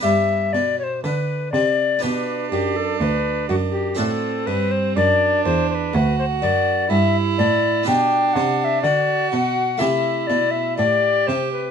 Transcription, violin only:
X:1
M:4/4
L:1/8
Q:1/4=61
K:G
V:1 name="Violin"
z4 D4 | C2 D2 F2 E2 | D2 F2 E2 G2 |]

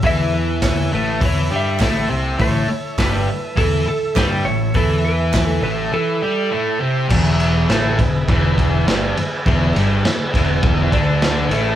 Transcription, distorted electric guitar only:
X:1
M:4/4
L:1/8
Q:1/4=102
K:A
V:1 name="Distorted electric guitar" clef=bass
[E,E]3 [A,,A,] [E,E] [=G,=G] [A,,A,] [=C,=C] | [A,,A,] z [=G,,=G,] z [E,E] z [G,=G] A,, | [E,E]3 [A,,A,] [E,E] [=G,=G] [A,,A,] [=C,=C] | [E,,E,]2 [A,,A,] E,, [E,,E,]2 [=G,,=G,] z |
[E,,E,] [=G,,=G,] z [E,,E,]2 [D,D]2 [A,,A,] |]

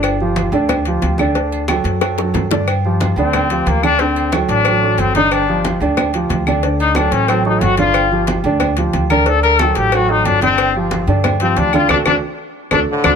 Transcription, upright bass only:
X:1
M:4/4
L:1/8
Q:1/4=182
K:Dphr
V:1 name="Upright bass" clef=bass
G,,,3 D,,3 D,,2- | D,,3 ^F,,3 G,,2- | G,,3 D,,3 D,,2- | D,,3 A,,,3 G,,,2- |
G,,,3 D,,3 D,,2- | D,,3 A,,,3 G,,,2- | G,,,3 D,,3 D,,2- | D,,3 A,,,3 G,,,2- |
G,,,3 G,,3 D,,2 | D,, D,, z3 D,, z D,, |]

